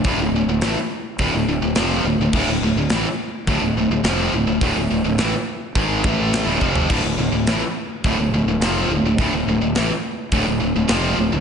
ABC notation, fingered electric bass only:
X:1
M:4/4
L:1/16
Q:1/4=105
K:Dm
V:1 name="Fingered electric bass" clef=bass
D,,, D,,, D,,, D,,, A,,, z3 D,,, D,,, D,,, D,,, F,,,2 D,,, D,,, | D,,, D,,, D,,, D,,, A,,, z3 D,,, D,,, D,,, D,,, F,,,2 D,,, D,,, | D,,, D,,, D,,, D,,, A,,, z3 ^G,,,2 A,,,3 D,,, F,,,2 | D,,, D,,, D,,, D,,, A,,, z3 D,,, D,,, D,,, D,,, F,,,2 D,,, D,,, |
D,,, D,,, D,,, D,,, A,,, z3 D,,, D,,, D,,, D,,, F,,,2 D,,, D,,, |]